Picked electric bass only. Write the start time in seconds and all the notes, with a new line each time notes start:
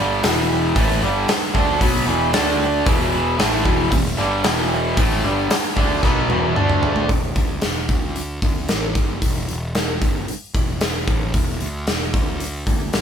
Already playing: G1
0.24 E1
0.76 A1
1.02 G1
1.28 muted picked electric bass stroke
1.55 D2
1.81 B1
2.07 E1
2.33 D2
2.86 E1
3.39 A1
3.65 E1
3.92 E1
4.18 G1
4.45 E1
4.97 A1
5.23 G1
5.50 muted picked electric bass stroke
5.77 D2
6.03 B1
6.29 E1
6.55 D2
7.09 E1
7.36 D2
7.63 E1
7.89 D2
8.43 D2
8.69 A1
8.96 G1
9.22 E1
9.49 E1
10.02 G1
10.29 muted picked electric bass stroke
10.54 E1
11.07 A1
11.34 E1
11.62 D2
11.88 E1
12.14 D2
12.67 D2
12.94 A1